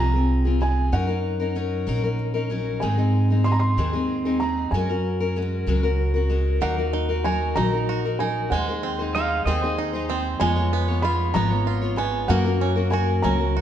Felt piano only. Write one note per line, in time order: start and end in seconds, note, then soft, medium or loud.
0.00 0.63 A#5 medium
0.62 0.94 G#5 medium
0.93 2.16 F#5 medium
2.80 3.41 G#5 medium
3.44 3.52 C6 medium
3.52 3.60 A#5 medium
3.60 4.37 C6 medium
4.40 4.73 A#5 medium
4.71 5.39 G#5 medium
6.62 7.27 F#5 medium
7.24 7.54 G#5 medium
7.56 8.15 A#5 medium
8.19 8.49 G#5 medium
8.50 9.73 F#5 medium
10.40 11.05 G#5 medium
11.02 11.36 B5 medium
11.34 11.94 A#5 medium
11.97 12.30 G#5 medium
12.28 12.94 F#5 medium
12.91 13.24 G#5 medium
13.22 13.61 A#5 medium